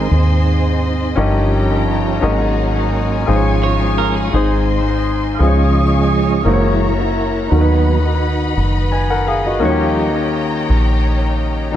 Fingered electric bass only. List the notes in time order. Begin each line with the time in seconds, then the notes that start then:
0.11 D#2
1.17 G1
2.23 G#1
3.29 G#1
4.34 G#1
5.40 C#2
6.45 F#1
7.52 D#2
8.57 F#1
9.63 D#2
10.70 A#1